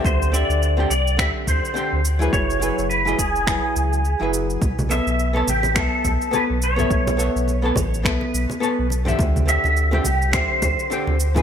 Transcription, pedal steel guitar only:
0, 0, Header, 1, 2, 480
1, 0, Start_track
1, 0, Key_signature, 2, "minor"
1, 0, Tempo, 571429
1, 42, Time_signature, 4, 2, 24, 8
1, 9594, End_track
2, 0, Start_track
2, 0, Title_t, "Pedal steel guitar"
2, 0, Program_c, 0, 26
2, 46, Note_on_c, 0, 72, 90
2, 279, Note_on_c, 0, 74, 88
2, 291, Note_off_c, 0, 72, 0
2, 749, Note_off_c, 0, 74, 0
2, 759, Note_on_c, 0, 74, 88
2, 997, Note_off_c, 0, 74, 0
2, 1000, Note_on_c, 0, 76, 111
2, 1065, Note_off_c, 0, 76, 0
2, 1246, Note_on_c, 0, 72, 81
2, 1691, Note_off_c, 0, 72, 0
2, 1955, Note_on_c, 0, 73, 110
2, 2405, Note_off_c, 0, 73, 0
2, 2432, Note_on_c, 0, 71, 91
2, 2674, Note_on_c, 0, 68, 83
2, 2685, Note_off_c, 0, 71, 0
2, 3605, Note_off_c, 0, 68, 0
2, 4124, Note_on_c, 0, 76, 97
2, 4570, Note_off_c, 0, 76, 0
2, 4615, Note_on_c, 0, 67, 87
2, 4832, Note_off_c, 0, 67, 0
2, 4856, Note_on_c, 0, 69, 92
2, 5339, Note_on_c, 0, 71, 86
2, 5343, Note_off_c, 0, 69, 0
2, 5402, Note_off_c, 0, 71, 0
2, 5574, Note_on_c, 0, 73, 92
2, 6784, Note_off_c, 0, 73, 0
2, 6784, Note_on_c, 0, 71, 92
2, 7455, Note_off_c, 0, 71, 0
2, 7971, Note_on_c, 0, 76, 104
2, 8451, Note_on_c, 0, 67, 95
2, 8461, Note_off_c, 0, 76, 0
2, 8670, Note_off_c, 0, 67, 0
2, 8679, Note_on_c, 0, 72, 105
2, 9594, Note_off_c, 0, 72, 0
2, 9594, End_track
0, 0, End_of_file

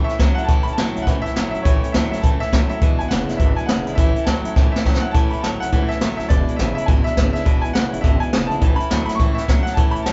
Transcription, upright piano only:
0, 0, Header, 1, 2, 480
1, 0, Start_track
1, 0, Key_signature, 3, "major"
1, 0, Tempo, 290276
1, 805, Time_signature, 4, 2, 24, 8
1, 16744, End_track
2, 0, Start_track
2, 0, Title_t, "Upright piano"
2, 0, Program_c, 0, 0
2, 70, Note_on_c, 0, 76, 102
2, 574, Note_on_c, 0, 78, 102
2, 604, Note_off_c, 0, 76, 0
2, 738, Note_on_c, 0, 81, 104
2, 786, Note_off_c, 0, 78, 0
2, 1045, Note_on_c, 0, 83, 102
2, 1082, Note_off_c, 0, 81, 0
2, 1127, Note_off_c, 0, 83, 0
2, 1205, Note_on_c, 0, 81, 96
2, 1690, Note_on_c, 0, 78, 93
2, 1742, Note_off_c, 0, 81, 0
2, 1773, Note_off_c, 0, 78, 0
2, 2012, Note_on_c, 0, 76, 115
2, 2467, Note_off_c, 0, 76, 0
2, 2492, Note_on_c, 0, 76, 93
2, 2686, Note_on_c, 0, 73, 88
2, 2707, Note_off_c, 0, 76, 0
2, 3180, Note_on_c, 0, 76, 78
2, 3204, Note_off_c, 0, 73, 0
2, 3468, Note_off_c, 0, 76, 0
2, 3493, Note_on_c, 0, 76, 88
2, 3665, Note_on_c, 0, 81, 92
2, 3688, Note_off_c, 0, 76, 0
2, 3974, Note_on_c, 0, 76, 115
2, 3989, Note_off_c, 0, 81, 0
2, 4430, Note_off_c, 0, 76, 0
2, 4456, Note_on_c, 0, 76, 105
2, 4940, Note_on_c, 0, 80, 95
2, 4961, Note_off_c, 0, 76, 0
2, 5098, Note_on_c, 0, 78, 80
2, 5114, Note_off_c, 0, 80, 0
2, 5574, Note_on_c, 0, 76, 83
2, 5613, Note_off_c, 0, 78, 0
2, 5893, Note_on_c, 0, 80, 95
2, 5906, Note_off_c, 0, 76, 0
2, 6049, Note_on_c, 0, 78, 80
2, 6091, Note_off_c, 0, 80, 0
2, 6519, Note_off_c, 0, 78, 0
2, 6534, Note_on_c, 0, 76, 93
2, 7013, Note_on_c, 0, 81, 76
2, 7053, Note_off_c, 0, 76, 0
2, 7802, Note_on_c, 0, 76, 86
2, 7932, Note_off_c, 0, 81, 0
2, 8280, Note_on_c, 0, 78, 88
2, 8318, Note_off_c, 0, 76, 0
2, 8454, Note_on_c, 0, 81, 94
2, 8468, Note_off_c, 0, 78, 0
2, 8771, Note_on_c, 0, 83, 85
2, 8789, Note_off_c, 0, 81, 0
2, 8949, Note_on_c, 0, 81, 85
2, 8973, Note_off_c, 0, 83, 0
2, 9032, Note_off_c, 0, 81, 0
2, 9262, Note_on_c, 0, 78, 102
2, 9733, Note_on_c, 0, 76, 103
2, 9769, Note_off_c, 0, 78, 0
2, 10175, Note_off_c, 0, 76, 0
2, 10200, Note_on_c, 0, 76, 95
2, 10394, Note_on_c, 0, 74, 99
2, 10408, Note_off_c, 0, 76, 0
2, 10852, Note_on_c, 0, 76, 87
2, 10855, Note_off_c, 0, 74, 0
2, 11135, Note_off_c, 0, 76, 0
2, 11160, Note_on_c, 0, 76, 96
2, 11345, Note_on_c, 0, 80, 98
2, 11348, Note_off_c, 0, 76, 0
2, 11428, Note_off_c, 0, 80, 0
2, 11644, Note_on_c, 0, 76, 108
2, 12099, Note_off_c, 0, 76, 0
2, 12124, Note_on_c, 0, 76, 101
2, 12592, Note_on_c, 0, 80, 104
2, 12637, Note_off_c, 0, 76, 0
2, 12788, Note_on_c, 0, 78, 96
2, 12802, Note_off_c, 0, 80, 0
2, 13246, Note_on_c, 0, 76, 98
2, 13298, Note_off_c, 0, 78, 0
2, 13562, Note_on_c, 0, 80, 107
2, 13582, Note_off_c, 0, 76, 0
2, 14001, Note_on_c, 0, 81, 110
2, 14024, Note_off_c, 0, 80, 0
2, 14485, Note_on_c, 0, 83, 109
2, 14532, Note_off_c, 0, 81, 0
2, 14950, Note_off_c, 0, 83, 0
2, 14975, Note_on_c, 0, 83, 100
2, 15058, Note_off_c, 0, 83, 0
2, 15135, Note_on_c, 0, 85, 107
2, 15454, Note_on_c, 0, 76, 97
2, 15482, Note_off_c, 0, 85, 0
2, 15920, Note_on_c, 0, 78, 100
2, 15975, Note_off_c, 0, 76, 0
2, 16104, Note_on_c, 0, 81, 100
2, 16139, Note_off_c, 0, 78, 0
2, 16391, Note_on_c, 0, 83, 106
2, 16445, Note_off_c, 0, 81, 0
2, 16473, Note_off_c, 0, 83, 0
2, 16577, Note_on_c, 0, 81, 90
2, 16744, Note_off_c, 0, 81, 0
2, 16744, End_track
0, 0, End_of_file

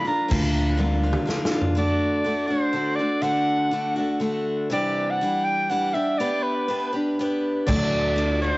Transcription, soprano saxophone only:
0, 0, Header, 1, 2, 480
1, 0, Start_track
1, 0, Tempo, 490998
1, 302, Time_signature, 3, 2, 24, 8
1, 8385, End_track
2, 0, Start_track
2, 0, Title_t, "Soprano saxophone"
2, 0, Program_c, 0, 64
2, 73, Note_on_c, 0, 82, 103
2, 301, Note_off_c, 0, 82, 0
2, 1742, Note_on_c, 0, 74, 92
2, 2411, Note_on_c, 0, 72, 93
2, 2426, Note_off_c, 0, 74, 0
2, 2888, Note_on_c, 0, 74, 98
2, 2902, Note_off_c, 0, 72, 0
2, 3150, Note_on_c, 0, 78, 114
2, 3165, Note_off_c, 0, 74, 0
2, 3888, Note_off_c, 0, 78, 0
2, 4623, Note_on_c, 0, 74, 96
2, 4988, Note_on_c, 0, 78, 103
2, 5002, Note_off_c, 0, 74, 0
2, 5319, Note_on_c, 0, 79, 108
2, 5334, Note_off_c, 0, 78, 0
2, 5567, Note_on_c, 0, 78, 108
2, 5582, Note_off_c, 0, 79, 0
2, 5804, Note_on_c, 0, 76, 96
2, 5819, Note_off_c, 0, 78, 0
2, 6041, Note_on_c, 0, 74, 97
2, 6056, Note_off_c, 0, 76, 0
2, 6287, Note_on_c, 0, 71, 90
2, 6301, Note_off_c, 0, 74, 0
2, 6775, Note_off_c, 0, 71, 0
2, 7496, Note_on_c, 0, 74, 96
2, 8180, Note_off_c, 0, 74, 0
2, 8225, Note_on_c, 0, 72, 104
2, 8385, Note_off_c, 0, 72, 0
2, 8385, End_track
0, 0, End_of_file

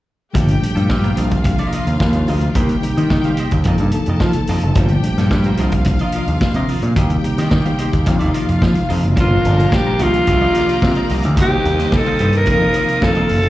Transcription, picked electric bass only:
0, 0, Header, 1, 3, 480
1, 0, Start_track
1, 0, Key_signature, -2, "minor"
1, 0, Tempo, 550964
1, 306, Time_signature, 4, 2, 24, 8
1, 11752, End_track
2, 0, Start_track
2, 0, Title_t, "Picked electric bass"
2, 0, Program_c, 0, 34
2, 308, Note_on_c, 0, 31, 100
2, 475, Note_off_c, 0, 31, 0
2, 669, Note_on_c, 0, 43, 90
2, 752, Note_off_c, 0, 43, 0
2, 786, Note_on_c, 0, 43, 89
2, 954, Note_off_c, 0, 43, 0
2, 1031, Note_on_c, 0, 36, 73
2, 1365, Note_off_c, 0, 36, 0
2, 1630, Note_on_c, 0, 39, 78
2, 1713, Note_off_c, 0, 39, 0
2, 1748, Note_on_c, 0, 39, 84
2, 1989, Note_off_c, 0, 39, 0
2, 1989, Note_on_c, 0, 38, 83
2, 2157, Note_off_c, 0, 38, 0
2, 2226, Note_on_c, 0, 39, 103
2, 2395, Note_off_c, 0, 39, 0
2, 2593, Note_on_c, 0, 51, 82
2, 2676, Note_off_c, 0, 51, 0
2, 2707, Note_on_c, 0, 51, 92
2, 2876, Note_off_c, 0, 51, 0
2, 3072, Note_on_c, 0, 39, 79
2, 3155, Note_off_c, 0, 39, 0
2, 3186, Note_on_c, 0, 41, 96
2, 3272, Note_off_c, 0, 41, 0
2, 3311, Note_on_c, 0, 43, 81
2, 3395, Note_off_c, 0, 43, 0
2, 3552, Note_on_c, 0, 41, 88
2, 3636, Note_off_c, 0, 41, 0
2, 3666, Note_on_c, 0, 53, 100
2, 3752, Note_off_c, 0, 53, 0
2, 3912, Note_on_c, 0, 41, 85
2, 3995, Note_off_c, 0, 41, 0
2, 4030, Note_on_c, 0, 30, 91
2, 4114, Note_off_c, 0, 30, 0
2, 4149, Note_on_c, 0, 31, 107
2, 4317, Note_off_c, 0, 31, 0
2, 4512, Note_on_c, 0, 43, 96
2, 4596, Note_off_c, 0, 43, 0
2, 4626, Note_on_c, 0, 43, 103
2, 4795, Note_off_c, 0, 43, 0
2, 4870, Note_on_c, 0, 36, 86
2, 5206, Note_off_c, 0, 36, 0
2, 5470, Note_on_c, 0, 39, 79
2, 5554, Note_off_c, 0, 39, 0
2, 5702, Note_on_c, 0, 48, 84
2, 5789, Note_off_c, 0, 48, 0
2, 5949, Note_on_c, 0, 46, 92
2, 6034, Note_off_c, 0, 46, 0
2, 6070, Note_on_c, 0, 39, 110
2, 6238, Note_off_c, 0, 39, 0
2, 6431, Note_on_c, 0, 51, 83
2, 6515, Note_off_c, 0, 51, 0
2, 6551, Note_on_c, 0, 51, 99
2, 6719, Note_off_c, 0, 51, 0
2, 6918, Note_on_c, 0, 39, 87
2, 7033, Note_off_c, 0, 39, 0
2, 7033, Note_on_c, 0, 41, 96
2, 7116, Note_off_c, 0, 41, 0
2, 7157, Note_on_c, 0, 39, 96
2, 7239, Note_off_c, 0, 39, 0
2, 7399, Note_on_c, 0, 41, 82
2, 7480, Note_off_c, 0, 41, 0
2, 7513, Note_on_c, 0, 53, 98
2, 7596, Note_off_c, 0, 53, 0
2, 7761, Note_on_c, 0, 41, 80
2, 7841, Note_off_c, 0, 41, 0
2, 7877, Note_on_c, 0, 30, 76
2, 7958, Note_off_c, 0, 30, 0
2, 7991, Note_on_c, 0, 31, 104
2, 8158, Note_off_c, 0, 31, 0
2, 8238, Note_on_c, 0, 31, 110
2, 8403, Note_off_c, 0, 31, 0
2, 8714, Note_on_c, 0, 36, 80
2, 8880, Note_off_c, 0, 36, 0
2, 8954, Note_on_c, 0, 36, 86
2, 9119, Note_off_c, 0, 36, 0
2, 9433, Note_on_c, 0, 48, 101
2, 9515, Note_off_c, 0, 48, 0
2, 9676, Note_on_c, 0, 36, 85
2, 9798, Note_off_c, 0, 36, 0
2, 9798, Note_on_c, 0, 38, 85
2, 9911, Note_off_c, 0, 38, 0
2, 9911, Note_on_c, 0, 39, 101
2, 10077, Note_off_c, 0, 39, 0
2, 10155, Note_on_c, 0, 39, 101
2, 10319, Note_off_c, 0, 39, 0
2, 10634, Note_on_c, 0, 43, 83
2, 10868, Note_off_c, 0, 43, 0
2, 10868, Note_on_c, 0, 41, 98
2, 11034, Note_off_c, 0, 41, 0
2, 11347, Note_on_c, 0, 41, 92
2, 11513, Note_off_c, 0, 41, 0
2, 11587, Note_on_c, 0, 30, 78
2, 11752, Note_off_c, 0, 30, 0
2, 11752, End_track
3, 0, Start_track
3, 0, Title_t, "Muted picked electric bass strokes"
3, 5589, Note_on_c, 9, 29, 46
3, 5676, Note_off_c, 9, 29, 0
3, 11752, End_track
0, 0, End_of_file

